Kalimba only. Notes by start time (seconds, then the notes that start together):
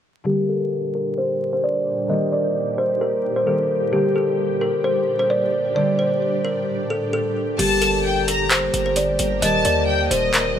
0.26 G4
0.49 A4
0.95 A#4
1.18 C5
1.53 C5
1.64 D5
2.10 D#5
2.32 D5
2.78 C5
3.01 A#4
3.36 C5
3.47 A4
3.93 G4
4.16 A4
4.61 A#4
4.84 C5
5.19 C5
5.30 D5
5.76 D5
5.99 C5
6.45 A#4
6.90 A4
7.13 A4
7.59 G4
7.82 A4
8.28 A#4
8.51 C5
8.86 C5
8.97 D5
9.42 D#5
9.65 D5
10.11 C5
10.34 A#4